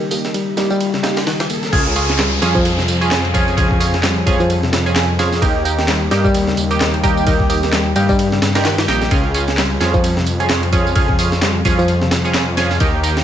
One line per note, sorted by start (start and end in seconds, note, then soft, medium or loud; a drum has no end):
0.00 0.94 C#3 medium
0.00 1.27 D#3 medium
0.00 0.34 G3 medium
0.00 riser medium
0.11 0.55 A#3 medium
0.11 0.55 D#4 medium
0.11 0.55 G4 medium
0.11 open hi-hat medium
0.11 tambourine medium
0.24 snare soft
0.24 tambourine soft
0.34 0.46 G3 medium
0.34 ride medium
0.34 tambourine soft
0.57 0.70 G3 medium
0.57 0.71 A#3 medium
0.57 0.71 D#4 medium
0.57 0.71 G4 loud
0.57 snare soft
0.57 ride medium
0.57 tambourine medium
0.70 0.93 G3 medium
0.70 tambourine soft
0.80 ride medium
0.80 tambourine soft
0.94 1.03 C#3 medium
0.94 snare soft
1.03 1.17 A#3 medium
1.03 1.17 D#4 medium
1.03 1.17 G4 loud
1.03 snare loud
1.03 ride medium
1.03 tambourine medium
1.17 snare loud
1.17 ride medium
1.17 tambourine soft
1.26 1.39 D#3 medium
1.26 snare loud
1.26 ride medium
1.26 tambourine soft
1.40 snare loud
1.40 ride medium
1.50 1.57 A#3 medium
1.50 ride medium
1.50 tambourine medium
1.63 snare soft
1.63 tambourine soft
1.72 2.39 C#2 loud
1.72 1.85 C#3 medium
1.72 1.93 C#4 medium
1.72 1.93 F4 medium
1.72 1.93 G#4 medium
1.72 kick loud
1.72 crash loud
1.72 ride medium
1.72 tambourine soft
1.72 downlifter medium
1.96 2.40 C#4 medium
1.96 2.40 F4 medium
1.96 2.40 G#4 medium
1.96 ride medium
1.96 tambourine medium
2.09 snare medium
2.09 tambourine soft
2.19 2.31 G3 medium
2.19 snare loud
2.19 clap loud
2.19 ride medium
2.19 tambourine soft
2.42 4.24 F2 loud
2.42 2.54 F3 medium
2.42 2.56 C#4 medium
2.42 2.56 F4 medium
2.42 2.56 G#4 loud
2.42 snare soft
2.42 ride medium
2.42 tambourine medium
2.55 2.77 F3 loud
2.55 kick loud
2.55 tambourine soft
2.65 ride medium
2.65 tambourine soft
2.78 2.87 C3 medium
2.78 snare soft
2.88 ride medium
2.88 tambourine medium
3.01 3.20 C#4 medium
3.01 3.20 F4 medium
3.01 3.20 G#4 medium
3.01 ride soft
3.01 tambourine soft
3.11 snare loud
3.11 clap loud
3.11 ride medium
3.11 tambourine soft
3.25 ride soft
3.34 3.56 F3 medium
3.34 3.55 C#4 loud
3.34 3.55 F4 medium
3.34 3.55 G#4 loud
3.34 kick loud
3.34 ride medium
3.34 tambourine medium
3.48 tambourine soft
3.57 3.69 C#3 medium
3.57 3.77 C#4 medium
3.57 3.77 F4 medium
3.57 3.77 G#4 medium
3.57 kick loud
3.57 ride medium
3.57 tambourine soft
3.71 kick loud
3.80 4.24 C#4 medium
3.80 4.24 F4 medium
3.80 4.24 G#4 medium
3.80 open hi-hat medium
3.80 tambourine medium
3.94 snare soft
3.94 tambourine soft
4.03 4.15 G3 medium
4.03 snare loud
4.03 clap loud
4.03 ride medium
4.03 tambourine soft
4.26 5.44 F2 loud
4.26 4.39 F3 medium
4.26 4.40 C#4 medium
4.26 4.40 F4 medium
4.26 4.41 G#4 loud
4.26 kick loud
4.26 ride medium
4.26 tambourine medium
4.40 4.62 F3 loud
4.40 tambourine soft
4.50 ride medium
4.50 tambourine soft
4.63 4.72 C3 medium
4.63 snare soft
4.73 snare loud
4.73 ride medium
4.73 tambourine medium
4.86 5.05 C#4 medium
4.86 5.05 F4 medium
4.86 5.05 G#4 medium
4.86 tambourine soft
4.96 snare loud
4.96 clap loud
4.96 ride medium
4.96 tambourine soft
5.19 5.41 F3 medium
5.19 5.40 C#4 medium
5.19 5.40 F4 medium
5.19 5.40 G#4 loud
5.19 snare medium
5.19 ride medium
5.19 tambourine medium
5.32 snare soft
5.32 tambourine soft
5.42 6.08 D#2 loud
5.42 5.54 D#3 medium
5.42 5.62 A#3 medium
5.42 5.62 D#4 medium
5.42 5.62 G4 medium
5.42 kick loud
5.42 ride medium
5.42 tambourine soft
5.65 6.09 A#3 medium
5.65 6.09 D#4 medium
5.65 6.09 G4 medium
5.65 ride medium
5.65 tambourine medium
5.79 snare soft
5.79 tambourine soft
5.88 6.00 G3 medium
5.88 snare loud
5.88 clap loud
5.88 ride medium
5.88 tambourine soft
6.11 6.30 G2 loud
6.11 6.23 G3 medium
6.11 6.25 A#3 medium
6.11 6.25 D#4 medium
6.11 6.25 G4 loud
6.11 snare soft
6.11 ride medium
6.11 tambourine medium
6.24 6.46 G3 loud
6.24 kick loud
6.24 tambourine soft
6.34 6.53 D#2 medium
6.34 ride medium
6.34 tambourine soft
6.47 6.57 C#3 medium
6.47 snare soft
6.57 7.93 D#2 medium
6.57 ride medium
6.57 tambourine medium
6.71 6.90 A#3 medium
6.71 6.90 D#4 medium
6.71 6.90 G4 medium
6.71 ride soft
6.71 tambourine soft
6.81 snare loud
6.81 clap loud
6.81 ride medium
6.81 tambourine soft
6.94 ride soft
7.03 7.26 G3 medium
7.03 7.24 A#3 medium
7.03 7.24 D#4 medium
7.03 7.24 G4 loud
7.03 kick loud
7.03 ride medium
7.03 tambourine medium
7.17 tambourine soft
7.27 7.39 D#3 medium
7.27 7.47 A#3 medium
7.27 7.47 D#4 medium
7.27 7.47 G4 medium
7.27 kick loud
7.27 ride medium
7.27 tambourine soft
7.40 kick loud
7.49 7.94 A#3 medium
7.49 7.93 D#4 medium
7.49 7.94 G4 medium
7.49 open hi-hat medium
7.49 tambourine medium
7.63 snare soft
7.63 tambourine soft
7.73 7.85 G3 medium
7.73 snare loud
7.73 clap loud
7.73 ride medium
7.73 tambourine soft
7.96 8.39 G2 loud
7.96 8.08 G3 medium
7.96 8.10 A#3 medium
7.96 8.10 D#4 medium
7.96 8.10 G4 loud
7.96 ride medium
7.96 tambourine medium
8.09 8.31 G3 loud
8.09 kick loud
8.09 tambourine soft
8.19 ride medium
8.19 tambourine soft
8.32 8.42 C#3 medium
8.32 snare medium
8.42 8.85 G2 medium
8.42 snare loud
8.42 ride medium
8.42 tambourine medium
8.55 8.74 A#3 medium
8.55 8.74 D#4 medium
8.55 8.74 G4 medium
8.55 snare loud
8.55 ride medium
8.55 tambourine soft
8.65 8.77 D#3 medium
8.65 snare loud
8.65 clap loud
8.65 ride medium
8.65 tambourine soft
8.78 snare loud
8.78 ride medium
8.88 9.07 A#1 medium
8.88 9.09 A#3 loud
8.88 8.95 A#3 medium
8.88 9.09 D#4 medium
8.88 9.09 G4 loud
8.88 snare medium
8.88 ride medium
8.88 tambourine medium
9.02 snare soft
9.02 tambourine soft
9.11 9.77 C#2 loud
9.11 9.23 C#3 medium
9.11 9.31 C#4 medium
9.11 9.31 F4 medium
9.11 9.31 G#4 medium
9.11 kick loud
9.11 ride medium
9.11 tambourine soft
9.34 9.78 C#4 medium
9.34 9.78 F4 medium
9.34 9.78 G#4 medium
9.34 ride medium
9.34 tambourine medium
9.48 snare soft
9.48 tambourine soft
9.57 9.69 G3 medium
9.57 snare loud
9.57 clap loud
9.57 ride medium
9.57 tambourine soft
9.80 11.62 F2 loud
9.80 9.93 F3 medium
9.80 9.94 C#4 medium
9.80 9.94 F4 medium
9.80 9.94 G#4 loud
9.80 snare soft
9.80 ride medium
9.80 tambourine medium
9.94 10.16 F3 loud
9.94 kick loud
9.94 tambourine soft
10.04 ride medium
10.04 tambourine soft
10.17 10.26 C3 medium
10.17 snare soft
10.27 ride medium
10.27 tambourine medium
10.40 10.59 C#4 medium
10.40 10.59 F4 medium
10.40 10.59 G#4 medium
10.40 ride soft
10.40 tambourine soft
10.49 snare loud
10.49 clap loud
10.49 ride medium
10.49 tambourine soft
10.63 ride soft
10.73 10.95 F3 medium
10.73 10.94 C#4 medium
10.73 10.94 F4 medium
10.73 10.94 G#4 loud
10.73 kick medium
10.73 ride medium
10.73 tambourine medium
10.87 tambourine soft
10.95 11.08 C#3 medium
10.95 11.16 C#4 medium
10.95 11.16 F4 medium
10.95 11.16 G#4 medium
10.95 kick loud
10.95 ride medium
10.95 tambourine soft
11.09 kick loud
11.19 11.63 C#4 medium
11.19 11.63 F4 medium
11.19 11.63 G#4 medium
11.19 open hi-hat medium
11.19 tambourine medium
11.32 snare soft
11.32 tambourine soft
11.42 11.54 G3 medium
11.42 snare loud
11.42 clap loud
11.42 ride medium
11.42 tambourine soft
11.65 12.77 F2 loud
11.65 11.77 F3 medium
11.65 11.79 C#4 medium
11.65 11.79 F4 medium
11.65 11.79 G#4 loud
11.65 kick loud
11.65 ride medium
11.65 tambourine medium
11.79 12.00 F3 loud
11.79 tambourine soft
11.88 ride medium
11.88 tambourine soft
12.02 12.11 C3 medium
12.02 snare soft
12.11 snare loud
12.11 ride medium
12.11 tambourine medium
12.24 12.43 C#4 medium
12.24 12.43 F4 medium
12.24 12.43 G#4 medium
12.24 tambourine soft
12.34 snare loud
12.34 clap loud
12.34 ride medium
12.34 tambourine soft
12.57 12.80 F3 medium
12.57 12.78 C#4 medium
12.57 12.78 F4 medium
12.57 12.78 G#4 loud
12.57 snare medium
12.57 ride medium
12.57 tambourine medium
12.71 snare soft
12.71 tambourine soft
12.80 13.24 D#2 loud
12.80 12.92 D#3 medium
12.80 13.00 A#3 medium
12.80 13.00 D#4 medium
12.80 13.00 G4 medium
12.80 kick loud
12.80 ride medium
12.80 tambourine soft
13.03 13.24 A#3 medium
13.03 13.24 D#4 medium
13.03 13.24 G4 medium
13.03 ride medium
13.03 tambourine medium
13.17 snare medium
13.17 tambourine soft